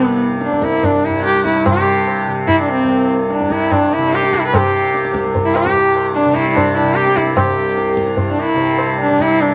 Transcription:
Already playing: tanpura C2 G2 C3, sarangi C4
0.03 sarangi B3
0.41 sarangi D4, tabla te
0.50 tanpura C2, tabla te
0.62 sarangi E4, tabla ke
0.72 tabla te
0.83 sarangi D4, tabla tin, tabla ge
1.04 sarangi E4
1.09 tanpura G2
1.24 sarangi G4, tabla te
1.36 tabla te
1.45 sarangi E4, tabla ke
1.56 tabla te
1.66 tanpura C3, sarangi G4, tabla na, tabla ge
2.07 tabla na
2.27 tanpura C3
2.47 sarangi E4, tabla tin, tabla ge
2.62 sarangi D4
2.69 sarangi C4
2.83 tanpura C2
2.89 tabla tin
3.30 sarangi D4, tabla te
3.40 tanpura G2, tabla te
3.50 sarangi E4, tabla ke
3.61 tabla te
3.71 sarangi D4, tabla na, tabla ge
3.92 sarangi E4, tabla te
3.98 tanpura C3
4.13 sarangi G4, tabla te
4.22 tabla te
4.32 sarangi E4, tabla ke
4.43 sarangi B4, tabla te
4.54 tanpura C3, sarangi G4, tabla na, tabla ge
4.94 tabla te
5.05 tabla te
5.11 tanpura C2, tabla ke
5.25 tabla te
5.35 tabla tin, tabla ge
5.45 sarangi E4
5.55 sarangi G4, tabla na
5.66 tabla ke
5.70 tanpura G2
5.76 tabla tin
5.97 tabla na
6.15 sarangi D4, tabla te
6.25 tanpura C3, tabla te
6.35 sarangi E4, tabla ke
6.47 tabla te
6.51 sarangi D4 E4
6.57 tabla na, tabla ge
6.75 sarangi E4, tabla te
6.82 tanpura C3
6.95 sarangi G4, tabla te
7.07 tabla te
7.16 sarangi E4, tabla ke
7.27 tabla te
7.37 sarangi G4, tabla na, tabla ge
7.42 tanpura C2
7.77 tabla te
7.87 tabla te
7.97 tanpura G2, tabla ke
8.07 tabla te
8.17 tabla tin, tabla ge
8.30 sarangi D4
8.40 sarangi E4
8.54 tanpura C3, tabla tin
8.78 tabla na
8.98 sarangi D4, tabla te
9.09 tanpura C3, tabla te
9.19 sarangi E4, tabla ke
9.29 tabla te
9.39 sarangi D4, tabla te
9.49 tabla te

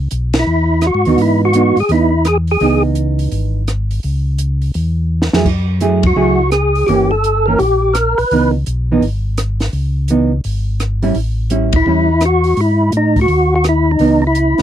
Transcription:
0.11 tonewheel organ B1, closed hi-hat
0.33 snare, ride
0.39 tonewheel organ E4
0.47 tonewheel organ E2
0.81 cross-stick, closed hi-hat
0.87 tonewheel organ F#4
0.95 tonewheel organ G#2
1.05 tonewheel organ D#2, hollow-body jazz guitar E3 B3 D#4, open hi-hat
1.18 tonewheel organ G#2 E4, open hi-hat
1.45 tonewheel organ F#4
1.53 hollow-body jazz guitar E3 B3 D#4, closed hi-hat
1.76 tonewheel organ G#2 G#4, open hi-hat
1.89 tonewheel organ E2 E4, hollow-body jazz guitar E3 B3 D#4, open hi-hat
2.25 tonewheel organ G#4, cross-stick, closed hi-hat
2.47 tonewheel organ G#4, open hi-hat
2.60 tonewheel organ C#2, hollow-body jazz guitar E3 B3 D#4, open hi-hat
2.95 closed hi-hat
3.19 open hi-hat
3.32 tonewheel organ G#1, open hi-hat
3.68 cross-stick, closed hi-hat
3.91 open hi-hat
4.03 tonewheel organ C#2, open hi-hat
4.38 closed hi-hat
4.62 open hi-hat
4.74 tonewheel organ E2, open hi-hat
5.22 snare
5.33 tonewheel organ F2, hollow-body jazz guitar F#3 A3 E4 G#4, snare
5.45 tonewheel organ F#2, kick, crash
5.81 hollow-body jazz guitar F#3 A3 E4 G#4, closed hi-hat
6.03 tonewheel organ F#4, kick, ride
6.16 tonewheel organ C#2, hollow-body jazz guitar F#3 A3 E4 G#4
6.51 tonewheel organ G#4, cross-stick, closed hi-hat
6.75 open hi-hat
6.87 tonewheel organ G1 G4, hollow-body jazz guitar E3 A#3 C#4, open hi-hat
7.11 tonewheel organ A4
7.24 closed hi-hat
7.46 hollow-body jazz guitar E3 A#3 C#4, tonewheel organ A#4
7.59 tonewheel organ A#1 G4, open hi-hat
7.93 tonewheel organ A#4, cross-stick, closed hi-hat
8.18 tonewheel organ A#1 B4, open hi-hat
8.31 tonewheel organ C#2, hollow-body jazz guitar E3 B3 D#4, open hi-hat
8.66 tonewheel organ B1, closed hi-hat
8.92 hollow-body jazz guitar E3 B3 D#4
9.01 tonewheel organ G#1, open hi-hat
9.38 cross-stick, closed hi-hat
9.60 snare, open hi-hat
9.73 tonewheel organ C#2, open hi-hat
10.08 hollow-body jazz guitar E3 B3 D#4, closed hi-hat
10.44 tonewheel organ G#1, open hi-hat
10.80 cross-stick, closed hi-hat
11.02 hollow-body jazz guitar G3 C#4 E4, open hi-hat
11.14 tonewheel organ A1, open hi-hat
11.50 hollow-body jazz guitar G3 C#4 E4, closed hi-hat
11.73 tonewheel organ E4, kick, ride
11.86 tonewheel organ E2, hollow-body jazz guitar G3 C#4 E4
12.21 cross-stick, closed hi-hat
12.25 tonewheel organ F#4
12.44 open hi-hat
12.57 tonewheel organ G#2 E4, open hi-hat
12.92 tonewheel organ A2, closed hi-hat
12.97 tonewheel organ D#4
13.16 kick, open hi-hat
13.21 tonewheel organ F#4
13.28 tonewheel organ D#2, open hi-hat
13.56 tonewheel organ F#4
13.64 cross-stick, closed hi-hat
13.69 tonewheel organ E4
13.91 tonewheel organ D#4
13.99 tonewheel organ C#2, hollow-body jazz guitar E3 B3 D#4, open hi-hat
14.22 tonewheel organ D#4
14.27 tonewheel organ E4
14.35 closed hi-hat
14.58 tonewheel organ B1, hollow-body jazz guitar E3, snare, open hi-hat

